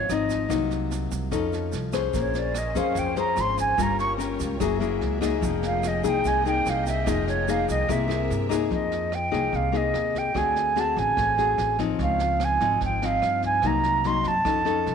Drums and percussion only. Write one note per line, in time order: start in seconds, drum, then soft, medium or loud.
0.10 cross-stick soft
0.10 snare soft
0.10 shaker medium
0.29 kick soft
0.29 snare soft
0.29 shaker medium
0.50 kick medium
0.50 cross-stick medium
0.50 snare soft
0.50 shaker medium
0.71 snare soft
0.71 shaker soft
0.91 snare soft
0.91 shaker medium
1.11 kick soft
1.11 snare soft
1.11 shaker medium
1.32 kick medium
1.32 cross-stick medium
1.32 snare soft
1.32 shaker medium
1.53 snare soft
1.53 shaker soft
1.72 snare soft
1.72 shaker medium
1.93 kick soft
1.93 cross-stick medium
1.93 snare soft
1.93 shaker medium
2.14 kick medium
2.14 snare soft
2.14 shaker medium
2.34 snare soft
2.34 shaker soft
2.55 cross-stick medium
2.55 snare soft
2.55 shaker medium
2.75 kick soft
2.75 snare soft
2.75 shaker medium
2.95 kick medium
2.95 snare soft
2.95 shaker medium
3.16 snare soft
3.16 shaker soft
3.37 cross-stick medium
3.37 snare soft
3.37 shaker medium
3.57 kick soft
3.57 snare soft
3.57 shaker medium
3.78 kick medium
3.78 cross-stick medium
3.78 snare soft
3.78 shaker medium
3.99 snare soft
3.99 shaker soft
4.20 snare soft
4.20 shaker medium
4.40 kick soft
4.40 snare soft
4.40 shaker medium
4.60 kick medium
4.60 cross-stick medium
4.60 snare soft
4.60 shaker medium
4.81 snare soft
4.81 shaker soft
5.01 snare soft
5.22 kick soft
5.22 cross-stick medium
5.22 snare soft
5.22 shaker medium
5.42 kick medium
5.42 snare soft
5.42 shaker medium
5.63 snare soft
5.63 shaker soft
5.83 cross-stick medium
5.83 snare soft
5.83 shaker medium
6.04 kick soft
6.04 snare soft
6.04 shaker medium
6.25 kick medium
6.25 snare soft
6.25 shaker medium
6.46 snare soft
6.46 shaker soft
6.66 cross-stick medium
6.66 snare soft
6.66 shaker medium
6.87 kick soft
6.87 snare soft
6.87 shaker medium
7.07 kick medium
7.07 cross-stick medium
7.07 snare soft
7.07 shaker medium
7.27 snare soft
7.27 shaker soft
7.48 snare soft
7.48 shaker medium
7.68 kick soft
7.68 snare soft
7.68 shaker medium
7.89 kick medium
7.89 cross-stick medium
7.89 snare soft
7.89 shaker medium
8.10 snare soft
8.10 shaker soft
8.30 snare soft
8.30 shaker medium
8.51 kick soft
8.51 cross-stick medium
8.51 snare soft
8.51 shaker medium
8.71 kick medium
8.71 snare soft
8.92 snare soft
9.12 cross-stick medium
9.12 snare soft
9.32 kick soft
9.32 snare soft
9.53 kick medium
9.53 snare soft
9.74 snare soft
9.94 cross-stick medium
9.94 snare soft
10.14 kick soft
10.14 snare soft
10.35 kick medium
10.35 cross-stick medium
10.35 snare soft
10.56 snare soft
10.76 snare soft
10.96 kick soft
10.96 snare soft
11.17 kick medium
11.17 cross-stick medium
11.17 snare soft
11.38 snare soft
11.58 snare soft
11.79 kick soft
11.79 cross-stick medium
11.79 snare soft
11.99 kick medium
11.99 snare soft
12.19 snare soft
12.40 cross-stick medium
12.40 snare soft
12.60 kick soft
12.60 snare soft
12.81 kick medium
12.81 snare soft
13.02 snare soft
13.22 cross-stick medium
13.22 snare soft
13.42 kick soft
13.42 snare soft
13.62 kick medium
13.62 cross-stick medium
13.62 snare soft
13.84 snare soft
14.04 snare soft
14.24 kick soft
14.24 snare soft
14.45 kick medium
14.45 cross-stick medium
14.45 snare soft
14.66 snare soft
14.86 snare soft